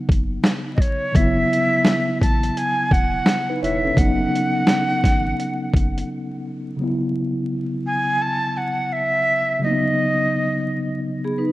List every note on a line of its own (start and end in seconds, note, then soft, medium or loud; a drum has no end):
0.00 1.10 C#3 medium
0.00 1.11 F#3 medium
0.00 1.15 B3 medium
0.00 1.13 D#4 medium
0.09 0.38 F#1 medium
0.09 kick medium
0.09 closed hi-hat soft
0.44 snare loud
0.44 closed hi-hat medium
0.75 0.82 D#5 medium
0.75 kick medium
0.81 1.17 C#5 medium
0.81 closed hi-hat medium
1.12 1.44 F#1 loud
1.12 3.92 C#3 medium
1.12 3.93 F#3 medium
1.12 2.21 E5 loud
1.12 kick medium
1.12 closed hi-hat medium
1.17 3.94 B3 medium
1.17 3.25 E4 medium
1.53 closed hi-hat medium
1.85 snare loud
1.85 closed hi-hat medium
2.22 2.50 A1 medium
2.22 2.59 A5 medium
2.22 kick medium
2.22 closed hi-hat medium
2.43 closed hi-hat medium
2.57 2.94 G#5 loud
2.57 closed hi-hat medium
2.91 3.20 E1 medium
2.91 3.62 F#5 loud
2.91 kick medium
2.91 closed hi-hat soft
3.26 snare loud
3.26 closed hi-hat medium
3.50 3.62 D#4 medium
3.50 3.62 B4 medium
3.62 3.91 E1 medium
3.62 3.83 E4 medium
3.62 3.83 C#5 medium
3.62 4.00 E5 medium
3.62 closed hi-hat medium
3.84 4.17 C#4 soft
3.84 4.17 A4 soft
3.94 4.26 F#1 loud
3.94 6.74 C#3 medium
3.94 6.75 F#3 medium
3.94 kick loud
3.94 closed hi-hat medium
3.98 6.76 B3 medium
3.98 6.77 D#4 medium
3.98 6.09 F#5 loud
4.35 closed hi-hat medium
4.67 snare loud
4.67 closed hi-hat medium
5.04 5.33 G#1 medium
5.04 kick medium
5.04 snare soft
5.04 closed hi-hat medium
5.40 closed hi-hat medium
5.74 6.03 F#1 medium
5.74 kick medium
5.74 closed hi-hat soft
5.98 closed hi-hat soft
6.77 9.56 C#3 medium
6.77 9.58 F#3 soft
6.81 9.59 B3 medium
6.81 9.60 E4 medium
7.86 8.23 G#5 medium
8.22 8.59 A5 loud
8.57 8.94 F#5 medium
8.93 9.63 E5 loud
9.59 11.52 C#3 medium
9.59 11.52 F#3 medium
9.64 9.71 A#3 soft
9.64 11.52 D#4 medium
9.64 11.00 D#5 medium
9.70 11.52 B3 medium
11.24 11.38 B3 medium
11.24 11.38 G#4 medium
11.38 11.52 D#4 medium
11.38 11.52 B4 medium